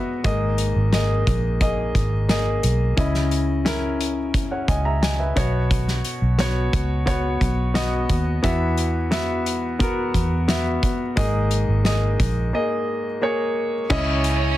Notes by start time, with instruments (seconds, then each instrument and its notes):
Already playing: grand piano B3 F#4 D#5 E5
0.24 fingered electric bass G#1, grand piano G#2 A#3 G#4 D#5, kick, closed hi-hat
0.58 closed hi-hat
0.76 fingered electric bass G#1
0.93 grand piano A#3 G#4 D#5, snare, closed hi-hat
1.27 fingered electric bass A#1, kick, closed hi-hat
1.60 grand piano A#3 G#4 D#5, kick, closed hi-hat
1.95 fingered electric bass G#1, kick, closed hi-hat
2.29 grand piano A#3 G#4 D#5, snare, closed hi-hat
2.63 fingered electric bass B1, closed hi-hat
2.97 fingered electric bass C#2, grand piano C#3 C#4 E4 D#5, kick, closed hi-hat
3.15 snare
3.31 closed hi-hat
3.65 grand piano C#4 E4 A#4, snare, closed hi-hat
4.01 closed hi-hat
4.34 kick, closed hi-hat
4.51 grand piano C#5 F#5
4.68 fingered electric bass C#2, grand piano D#5 G#5, kick, closed hi-hat
4.85 grand piano E5 A#5
5.02 grand piano D#5 G#5, snare, closed hi-hat
5.19 grand piano B4 E5
5.36 fingered electric bass B1, grand piano B2 B3 F#4 C#5, kick, closed hi-hat
5.71 kick, closed hi-hat
5.88 snare
6.05 closed hi-hat
6.22 fingered electric bass B1
6.38 grand piano B3 F#4 C#5, snare, closed hi-hat
6.73 fingered electric bass C#2, kick, closed hi-hat
7.06 grand piano B3 F#4 C#5, kick, closed hi-hat
7.41 fingered electric bass B1, kick, closed hi-hat
7.74 grand piano B3 F#4 D#5, snare, closed hi-hat
8.09 fingered electric bass D#2, kick, closed hi-hat
8.43 fingered electric bass E2, grand piano E3 B3 F#4 E5, kick, closed hi-hat
8.78 closed hi-hat
9.11 grand piano B3 F#4 E5, snare, closed hi-hat
9.46 closed hi-hat
9.79 grand piano B3 F#4 A#4, kick, closed hi-hat
10.14 fingered electric bass E2, kick, closed hi-hat
10.48 grand piano B3 F#4 E5, snare, closed hi-hat
10.83 kick, closed hi-hat
11.16 fingered electric bass G#1, grand piano G#2 A#3 G#4 D#5, kick, closed hi-hat
11.51 closed hi-hat
11.68 fingered electric bass G#1
11.84 grand piano A#3 G#4 D#5, snare, closed hi-hat
12.20 fingered electric bass A#1, kick, closed hi-hat
12.53 grand piano A#3 G#4 D#5
13.22 grand piano A#3 G#4 C#5
13.90 fingered electric bass C#2, grand piano C#3 C#4 E4 D#5, violin section C#4 C#5, kick, crash
14.24 closed hi-hat